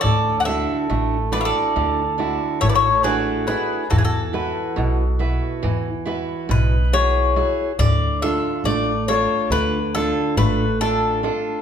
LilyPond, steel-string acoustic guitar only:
\new Staff \with { instrumentName = "Steel-string acoustic guitar" } { \time 9/8 \key d \lydian \tempo 4. = 46 d8 <d' e' fis'>8 a8 <d' e' fis'>8 d8 <d' e' fis'>8 a8 <d' e' fis'>8 <d' e' fis'>8 | e8 <e' fis' b'>8 b,8 <e' fis' b'>8 e8 <e' fis' b'>8 b,8 <e' fis' gis'>8 <e' fis' gis'>8 | d8 <d' f' a'>8 a8 <d' f' a'>8 d8 <d' f' a'>8 a8 <d' f' a'>8 <d' f' a'>8 | }